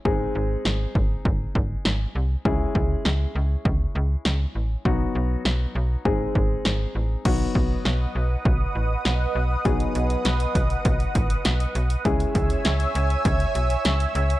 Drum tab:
CC |----------------|----------------|----------------|x---------------|
HH |----------------|----------------|----------------|----------------|
SD |----o-------o---|----o-------o---|----o-------o---|----o-------o---|
BD |o-----o-o-o-----|o-o-----o-------|o-------o-o-----|o-o-----o-------|

CC |----------------|----------------|
HH |xxxxxxxxxxxxxxxx|xxxxxxxxxxxxxxxx|
SD |----o-------o---|----o-------o---|
BD |o-----o-o-o-----|o-o-----o-------|